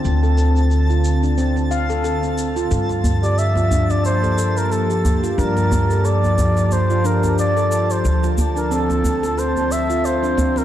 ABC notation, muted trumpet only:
X:1
M:4/4
L:1/16
Q:"Swing 16ths" 1/4=90
K:Dm
V:1 name="Muted trumpet"
z16 | z3 d e3 d c3 B A3 z | B4 d4 c2 B2 d3 c- | c z2 B A4 c2 e2 c3 B |]